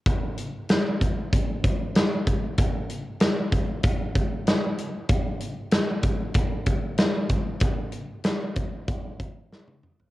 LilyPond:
\new DrumStaff \with { instrumentName = "Drums" } \drummode { \time 4/4 \tempo 4 = 95 <hh bd>8 hh8 <hh sn>8 <hh bd>8 <hh bd>8 <hh bd>8 <hh sn>8 <hh bd>8 | <hh bd>8 hh8 <hh sn>8 <hh bd>8 <hh bd>8 <hh bd>8 <hh sn>8 hh8 | <hh bd>8 hh8 <hh sn>8 <hh bd>8 <hh bd>8 <hh bd>8 <hh sn>8 <hh bd>8 | <hh bd>8 hh8 <hh sn>8 <hh bd>8 <hh bd>8 <hh bd>8 sn16 tommh16 toml16 tomfh16 | }